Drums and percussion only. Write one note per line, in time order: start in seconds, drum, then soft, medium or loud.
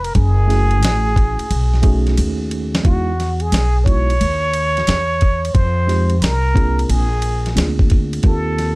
0.04 ride soft
0.15 kick medium
0.15 ride medium
0.50 snare soft
0.50 ride soft
0.71 ride soft
0.83 snare loud
0.83 hi-hat pedal medium
0.83 ride medium
1.16 kick medium
1.16 ride medium
1.39 ride soft
1.51 ride medium
1.74 snare soft
1.83 kick medium
1.83 ride medium
2.07 snare soft
2.07 ride soft
2.17 hi-hat pedal medium
2.17 ride medium
2.51 ride medium
2.75 snare loud
2.75 ride soft
2.85 kick medium
2.85 ride medium
3.20 snare soft
3.20 ride soft
3.40 ride soft
3.52 snare loud
3.52 hi-hat pedal medium
3.52 ride medium
3.86 kick medium
3.86 ride medium
4.10 ride soft
4.21 ride medium
4.54 ride medium
4.77 snare soft
4.77 ride soft
4.87 snare loud
4.87 hi-hat pedal medium
4.87 ride medium
5.21 kick medium
5.21 ride medium
5.45 ride medium
5.55 kick medium
5.55 ride medium
5.89 snare soft
5.89 ride soft
6.10 ride soft
6.22 snare loud
6.22 hi-hat pedal medium
6.22 ride medium
6.56 kick medium
6.56 ride medium
6.79 ride soft
6.90 ride medium
7.22 ride medium
7.46 snare soft
7.46 ride soft
7.57 snare loud
7.57 hi-hat pedal medium
7.57 ride medium
7.79 kick medium
7.90 kick medium
7.90 ride medium
8.13 ride soft
8.23 kick medium
8.23 ride medium
8.59 snare soft
8.59 ride soft